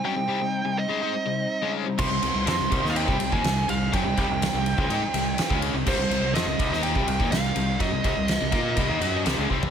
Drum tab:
CC |----------------|x---------------|----------------|x---------------|
RD |----------------|--x-x-x-x-x-x-x-|x-x-x-x-x-x-x-x-|--x-x-x-x-x-x-x-|
SD |----------------|----o--o----o---|----o-------o---|----o--o----o---|
FT |----------------|----------------|----------------|----------------|
BD |----------------|o-----o--o-o----|o-o----o-----o--|o-----o--o-o----|

CC |----------------|
RD |x-x-x-x-x-x-x---|
SD |----o-------o---|
FT |---------------o|
BD |o-o---o-o-----o-|